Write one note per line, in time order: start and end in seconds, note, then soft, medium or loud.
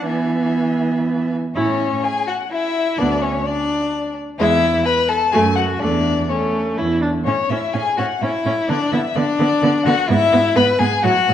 0.06 1.33 E3 soft
0.06 1.29 B3 medium
0.06 1.33 E5 medium
0.06 1.35 G#5 medium
1.55 1.96 A2 medium
1.55 2.05 C#4 medium
1.55 1.78 E4 medium
1.55 2.05 C#5 medium
2.04 2.26 G#4 medium
2.04 2.29 G#5 medium
2.27 2.35 F#4 medium
2.27 2.51 F#5 medium
2.50 3.00 E4 medium
2.50 3.00 E5 loud
2.98 3.38 D2 medium
2.98 3.21 B3 medium
2.98 3.23 D4 medium
2.98 3.23 D5 medium
3.22 3.45 C#4 medium
3.22 3.48 C#5 medium
3.46 4.15 D4 medium
3.46 4.17 D5 medium
4.39 4.78 E2 medium
4.39 4.61 G#3 medium
4.39 4.87 E4 loud
4.39 4.83 E5 loud
4.85 5.10 B4 loud
4.85 5.11 B5 loud
5.08 5.32 A4 loud
5.08 5.33 A5 loud
5.32 5.73 F#2 medium
5.32 5.55 A3 medium
5.32 5.40 G#4 medium
5.32 5.56 G#5 loud
5.56 5.81 F#4 medium
5.56 5.64 F#5 medium
5.80 6.21 E2 medium
5.80 6.04 A3 medium
5.80 6.29 D4 medium
5.80 6.31 D5 medium
6.29 6.79 A3 medium
6.29 6.77 C#4 medium
6.29 6.78 C#5 medium
6.78 7.18 E2 medium
6.78 7.01 E4 medium
7.02 7.10 D4 medium
7.25 7.34 A2 medium
7.25 7.35 C#4 medium
7.25 7.51 C#5 loud
7.49 7.58 A2 medium
7.49 7.59 C#4 medium
7.49 7.75 E4 medium
7.49 7.75 E5 medium
7.74 7.82 A2 medium
7.74 7.82 C#4 medium
7.74 7.97 G#4 medium
7.74 8.00 G#5 medium
7.97 8.07 A2 medium
7.97 8.06 C#4 medium
7.97 8.05 F#4 medium
7.97 8.23 F#5 medium
8.21 8.30 A2 medium
8.21 8.30 C#4 medium
8.21 8.71 E4 medium
8.21 8.68 E5 medium
8.45 8.53 A2 medium
8.45 8.54 C#4 medium
8.69 8.77 D3 medium
8.69 8.77 B3 medium
8.69 8.92 D4 medium
8.69 8.93 D5 loud
8.92 9.00 D3 medium
8.92 9.01 B3 medium
8.92 9.01 E4 medium
8.92 9.17 E5 medium
9.16 9.24 D3 medium
9.16 9.24 B3 medium
9.16 9.87 D4 loud
9.16 9.85 D5 loud
9.39 9.47 D3 medium
9.39 9.47 B3 medium
9.63 9.71 D3 medium
9.63 9.71 B3 medium
9.86 9.94 D3 medium
9.86 9.94 B3 medium
9.86 10.10 F#4 medium
9.86 10.08 F#5 loud
10.09 10.17 G#2 loud
10.09 10.18 B3 medium
10.09 10.57 E4 loud
10.09 10.55 E5 loud
10.32 10.40 G#2 medium
10.32 10.41 B3 medium
10.56 10.64 G#2 medium
10.56 10.64 B3 medium
10.56 10.80 B4 loud
10.56 10.64 B5 loud
10.79 10.88 G#2 medium
10.79 10.88 B3 medium
10.79 11.05 G#4 loud
10.79 11.04 G#5 loud
11.04 11.12 A2 medium
11.04 11.12 F#3 medium
11.04 11.34 F#4 loud
11.04 11.34 F#5 loud
11.29 11.34 A2 medium
11.29 11.34 F#3 medium